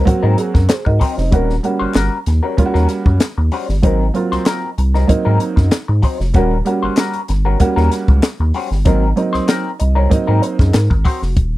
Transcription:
0.05 sub bass G#2, upright piano F#3 A#3 C4 F#4, kick, closed hi-hat
0.23 sub bass G#2, clean electric guitar F#3 C4 D#4 A#4
0.38 upright piano G#4, muted clean electric guitar stroke, closed hi-hat
0.54 sub bass F#2, upright piano A#4, muted clean electric guitar stroke, kick, snare
0.69 upright piano G#4 C5, muted clean electric guitar stroke, snare, clap, closed hi-hat
0.85 sub bass G#2, upright piano F#4 A#4 D#5, muted clean electric guitar stroke, kick
1.00 clean electric guitar F#3 C4 D#4 C5, kick, open hi-hat
1.17 sub bass F1, upright piano C4 D#4, muted clean electric guitar stroke, snare
1.31 sub bass D#1, clean electric guitar G3 C#4 F#4 A#4, upright piano G3 A#3 C#4 F#4, kick, closed hi-hat
1.50 snare
1.63 upright piano G3 A#3 C#4 F#4, muted clean electric guitar stroke, closed hi-hat
1.79 sub bass G1, clean electric guitar G3 C#4 F#4 C5
1.94 sub bass G1, clean electric guitar G3 C#4 F#4 A#4, snare, clap, closed hi-hat
2.26 sub bass D#2, muted clean electric guitar stroke, snare, closed hi-hat
2.43 clean electric guitar G3 C#4 F#4 A#4
2.57 sub bass D#2, upright piano G3 A#3 C#4 F4, muted clean electric guitar stroke, kick, closed hi-hat
2.66 upright piano F#4
2.74 sub bass D#2, clean electric guitar G3 C#4 F#4 A#4, snare
2.89 muted clean electric guitar stroke, snare, closed hi-hat
3.06 sub bass F#2, muted clean electric guitar stroke, kick
3.20 muted clean electric guitar stroke, snare, clap, closed hi-hat
3.38 sub bass D#2, muted clean electric guitar stroke
3.52 clean electric guitar G3 C#4 F#4 C5, open hi-hat
3.69 sub bass G1, muted clean electric guitar stroke, snare
3.82 sub bass G#1, upright piano F#3 A#3 C4 D#4, clean electric guitar F#3 C4 D#4 A#4, kick, closed hi-hat
4.14 upright piano F#3 A#3 C4 F4, muted clean electric guitar stroke, closed hi-hat
4.32 sub bass C2, clean electric guitar F#3 C4 D#4 C5, snare
4.45 clean electric guitar F#3 C4 D#4 A#4, snare, clap, closed hi-hat
4.78 sub bass C2, muted clean electric guitar stroke, closed hi-hat
4.94 clean electric guitar F#3 C4 D#4 A#4, snare
5.07 sub bass G#2, upright piano F#3 A#3 C4 D#4, muted clean electric guitar stroke, kick, closed hi-hat
5.25 sub bass G#2, clean electric guitar F#3 C4 D#4 A#4
5.40 muted clean electric guitar stroke, closed hi-hat
5.56 sub bass F#2, muted clean electric guitar stroke, kick, snare
5.71 muted clean electric guitar stroke, snare, clap, closed hi-hat
5.88 sub bass G#2, muted clean electric guitar stroke
6.02 clean electric guitar F#3 C4 D#4 C5, kick, open hi-hat
6.20 sub bass F1, muted clean electric guitar stroke, snare
6.34 sub bass D#1, upright piano G3 A#3 C#4 F#4, clean electric guitar G3 C#4 F#4 A#4, kick, closed hi-hat
6.65 upright piano G3 A#3 C#4 F#4, muted clean electric guitar stroke, closed hi-hat
6.83 sub bass G1, clean electric guitar G3 C#4 F#4 C5
6.97 clean electric guitar G3 C#4 F#4 A#4, snare, clap, closed hi-hat
7.14 closed hi-hat
7.28 sub bass G1, muted clean electric guitar stroke, snare, closed hi-hat
7.45 clean electric guitar G3 C#4 F#4 A#4
7.60 sub bass D#2, upright piano G3 A#3 C#4 F#4, muted clean electric guitar stroke, kick, closed hi-hat
7.76 sub bass D#2, clean electric guitar G3 C#4 F#4 A#4, snare
7.92 muted clean electric guitar stroke, snare, closed hi-hat
8.08 sub bass C#2, muted clean electric guitar stroke, kick
8.23 muted clean electric guitar stroke, snare, clap, closed hi-hat
8.40 sub bass D#2, muted clean electric guitar stroke
8.54 clean electric guitar G3 C#4 F#4 C5, open hi-hat
8.71 sub bass G1, muted clean electric guitar stroke, snare
8.85 sub bass G#1, upright piano F#3 A#3 C4 D#4, clean electric guitar F#3 C4 D#4 A#4, kick, closed hi-hat
9.16 upright piano F#3 A#3 C4 D#4, muted clean electric guitar stroke, closed hi-hat
9.33 sub bass C2, clean electric guitar F#3 C4 D#4 C5, snare
9.47 clean electric guitar F#3 C4 D#4 A#4, snare, clap, closed hi-hat
9.79 sub bass C2, upright piano D#5, muted clean electric guitar stroke, closed hi-hat
9.95 clean electric guitar F#3 C4 D#4 A#4, upright piano C#5
10.10 sub bass G#2, upright piano F#3 A#3 C4 D#4 D#5, muted clean electric guitar stroke, kick, closed hi-hat
10.27 sub bass G#2, clean electric guitar F#3 C4 D#4 A#4
10.42 upright piano C5, muted clean electric guitar stroke, closed hi-hat
10.59 sub bass F#2, upright piano G#4, muted clean electric guitar stroke, kick, snare
10.73 sub bass G#2, upright piano A#4, muted clean electric guitar stroke, snare, clap, closed hi-hat
10.90 sub bass G#1, muted clean electric guitar stroke, kick
11.05 clean electric guitar F#3 C4 D#4 C5, upright piano F#4, kick, open hi-hat
11.22 sub bass F1, muted clean electric guitar stroke, snare
11.37 sub bass D#1, kick, closed hi-hat

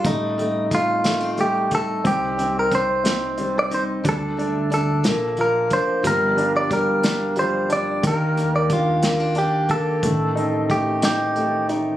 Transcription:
Already playing: steel-string acoustic guitar A#3 A4
0.04 upright bass A1, steel-string acoustic guitar G3 D#4, grand piano A3, clean electric guitar D#4, kick, closed hi-hat
0.38 grand piano A3, steel-string acoustic guitar C4, closed hi-hat
0.71 grand piano A3, steel-string acoustic guitar D#4, clean electric guitar F4, kick, closed hi-hat
1.04 grand piano A3, steel-string acoustic guitar A#3, snare, closed hi-hat
1.20 steel-string acoustic guitar C4
1.37 steel-string acoustic guitar G3, grand piano A3, clean electric guitar G4, closed hi-hat
1.71 grand piano A3, steel-string acoustic guitar D#4, clean electric guitar A4, kick, closed hi-hat
2.04 upright bass C2, steel-string acoustic guitar G3 D#4, grand piano C4, clean electric guitar G4, kick, closed hi-hat
2.38 steel-string acoustic guitar C4, grand piano C4, closed hi-hat
2.59 clean electric guitar A#4
2.71 grand piano C4, steel-string acoustic guitar D#4, clean electric guitar C5, kick, closed hi-hat
3.04 grand piano C4, steel-string acoustic guitar C4, snare, closed hi-hat
3.38 steel-string acoustic guitar G3, grand piano C4, closed hi-hat
3.59 clean electric guitar D5
3.70 grand piano C4, steel-string acoustic guitar D#4, closed hi-hat
3.74 clean electric guitar C5
4.04 upright bass D2, steel-string acoustic guitar G3 D4, grand piano D4, kick, closed hi-hat
4.09 clean electric guitar A4
4.37 steel-string acoustic guitar A3, grand piano D4, closed hi-hat
4.70 steel-string acoustic guitar D4, grand piano D4, clean electric guitar A4, closed hi-hat
5.03 upright bass A#1, steel-string acoustic guitar F3, grand piano A#3, snare, closed hi-hat
5.37 steel-string acoustic guitar F3, grand piano F4, closed hi-hat
5.41 clean electric guitar A#4
5.70 grand piano A#3, steel-string acoustic guitar D4, clean electric guitar C5, kick, closed hi-hat
6.03 upright bass G1, steel-string acoustic guitar F3 D4, grand piano G3, kick, closed hi-hat
6.07 clean electric guitar A#4
6.36 steel-string acoustic guitar A#3, grand piano D4, closed hi-hat
6.57 clean electric guitar D5
6.69 grand piano G3, steel-string acoustic guitar D4, clean electric guitar A#4, kick, closed hi-hat
7.03 steel-string acoustic guitar A#3, grand piano D4, snare, closed hi-hat
7.36 steel-string acoustic guitar F3, grand piano G3, clean electric guitar C5, closed hi-hat
7.69 grand piano D4, steel-string acoustic guitar D4, clean electric guitar D5, closed hi-hat
8.03 upright bass D#2, grand piano D#3, steel-string acoustic guitar A#3 G4, kick, closed hi-hat
8.07 clean electric guitar A#4
8.36 grand piano A#3, steel-string acoustic guitar D4, closed hi-hat
8.56 clean electric guitar D5
8.69 grand piano D4, clean electric guitar F4, steel-string acoustic guitar G4, kick, closed hi-hat
9.02 grand piano A#3, steel-string acoustic guitar C4, snare, closed hi-hat
9.20 steel-string acoustic guitar D4
9.35 steel-string acoustic guitar A#3, grand piano D4, clean electric guitar G4, closed hi-hat
9.69 grand piano A#3, steel-string acoustic guitar G4, clean electric guitar A4, kick, closed hi-hat
10.02 upright bass A1, steel-string acoustic guitar D#3 G4, grand piano A3, kick, closed hi-hat
10.35 steel-string acoustic guitar C4, grand piano D#4, closed hi-hat
10.69 grand piano A3, steel-string acoustic guitar G4, clean electric guitar G4, kick, closed hi-hat
11.02 steel-string acoustic guitar C4, grand piano D#4, clean electric guitar G4, snare, closed hi-hat
11.36 grand piano A3, steel-string acoustic guitar A3, closed hi-hat
11.69 grand piano D#4, steel-string acoustic guitar G4, closed hi-hat

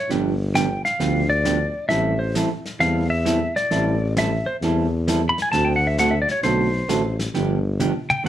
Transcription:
0.09 tuba G1, hollow-body jazz guitar D3 F3 B3 D4 G4, brush sweep, snare
0.54 hollow-body jazz guitar D3 F3 B3 D4 G4, electric slide guitar G5, snare, hi-hat pedal
0.85 electric slide guitar F5, snare
1.00 tuba D2, hollow-body jazz guitar D3 F3 B3 D4 G4, brush sweep, snare
1.30 electric slide guitar D5
1.44 hollow-body jazz guitar D3 F3 B3 D4 G4, snare, hi-hat pedal
1.89 tuba A1, hollow-body jazz guitar E3 G3 C4 E4 A4, electric slide guitar E5, brush sweep, snare
2.19 electric slide guitar C5
2.35 hollow-body jazz guitar E3 G3 C4 E4 A4, snare, hi-hat pedal
2.66 snare
2.79 tuba E2, hollow-body jazz guitar E3 G3 C4 E4 A4, electric slide guitar F5, brush sweep, snare
3.10 electric slide guitar E5
3.25 hollow-body jazz guitar E3 G3 C4 E4 A4, snare, hi-hat pedal
3.56 electric slide guitar D5, snare
3.71 tuba A1, hollow-body jazz guitar E3 G3 C4 E4 A4, brush sweep, snare
4.17 hollow-body jazz guitar E3 G3 C4 E4 A4, electric slide guitar E5, snare, hi-hat pedal
4.46 electric slide guitar C5
4.61 tuba E2, hollow-body jazz guitar E3 G3 C4 E4 A4, brush sweep, snare
5.07 hollow-body jazz guitar E3 G3 C4 E4 A4, snare, hi-hat pedal
5.29 electric slide guitar B5
5.38 snare
5.42 electric slide guitar G#5
5.52 tuba D2, hollow-body jazz guitar D3 A3 C4 F#4 A4, electric slide guitar A5, brush sweep, snare
5.65 electric slide guitar G5
5.76 electric slide guitar F#5
5.87 electric slide guitar E5
5.98 hollow-body jazz guitar D3 A3 C4 F#4 A4, electric slide guitar F#5, snare, hi-hat pedal
6.11 electric slide guitar E5
6.22 electric slide guitar D5
6.28 electric slide guitar C#5, snare
6.43 tuba B1, hollow-body jazz guitar D3 A3 C4 F#4 A4, electric slide guitar C5, brush sweep, snare
6.88 tuba A1, hollow-body jazz guitar D3 A3 C4 F#4 A4, snare, hi-hat pedal
7.19 snare
7.34 tuba G1, hollow-body jazz guitar D3 F3 B3 D4 G4, brush sweep, snare
7.80 hollow-body jazz guitar D3 F3 B3 D4 G4, hi-hat pedal, high tom
8.10 electric slide guitar G5, high tom
8.24 tuba D2, hollow-body jazz guitar D3 A3 C4 F#4

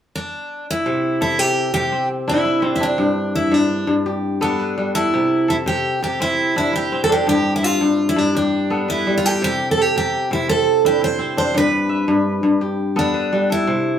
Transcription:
0.16 steel-string acoustic guitar D4
0.71 steel-string acoustic guitar E4
0.86 kora C3
1.21 steel-string acoustic guitar E4, kora A4
1.39 kora C3, steel-string acoustic guitar G4
1.74 kora C3, steel-string acoustic guitar G4
1.92 kora C4
2.28 kora D4 E4, steel-string acoustic guitar E4
2.45 kora E4
2.62 kora C4
2.76 steel-string acoustic guitar E4
2.80 kora D4, steel-string acoustic guitar D4
2.98 kora G2
3.35 steel-string acoustic guitar E4
3.52 kora G2, steel-string acoustic guitar D4
3.87 kora G2
4.06 kora G4
4.41 kora B3 A4, steel-string acoustic guitar D4
4.59 kora B4
4.78 kora G3
4.95 steel-string acoustic guitar E4, kora A4
5.14 kora C3
5.48 steel-string acoustic guitar E4, kora A4
5.66 kora C3, steel-string acoustic guitar G4
6.02 kora C3, steel-string acoustic guitar G4
6.20 kora C4, steel-string acoustic guitar E4
6.56 kora D4 E4, steel-string acoustic guitar E4
6.73 kora E4, steel-string acoustic guitar G4
6.92 kora C4
7.04 steel-string acoustic guitar A4
7.09 kora D4, steel-string acoustic guitar G4
7.27 kora G2, steel-string acoustic guitar G4
7.56 steel-string acoustic guitar E4
7.63 steel-string acoustic guitar F4, kora E5
7.81 kora G2
8.09 steel-string acoustic guitar E4
8.16 kora G2, steel-string acoustic guitar D4
8.35 steel-string acoustic guitar D4, kora G4
8.70 kora B3 A4
8.88 steel-string acoustic guitar E4, kora B4
9.07 kora G3
9.18 steel-string acoustic guitar F4
9.25 steel-string acoustic guitar G4, kora A4
9.42 kora C3, steel-string acoustic guitar G4
9.71 steel-string acoustic guitar A4
9.77 kora A4
9.81 steel-string acoustic guitar G4
9.96 kora C3, steel-string acoustic guitar G4
10.31 kora C3, steel-string acoustic guitar E4
10.49 kora C4, steel-string acoustic guitar A4
10.85 kora D4 E4, steel-string acoustic guitar G4
11.01 kora E4, steel-string acoustic guitar C5
11.19 kora C4
11.37 kora D4, steel-string acoustic guitar C5
11.54 kora G2, steel-string acoustic guitar B4
11.89 kora E5
12.08 kora G2
12.43 kora G2
12.61 kora G4
12.96 kora B3 A4, steel-string acoustic guitar D4
13.14 kora B4
13.33 kora G3
13.50 steel-string acoustic guitar E4, kora A4
13.67 kora C3

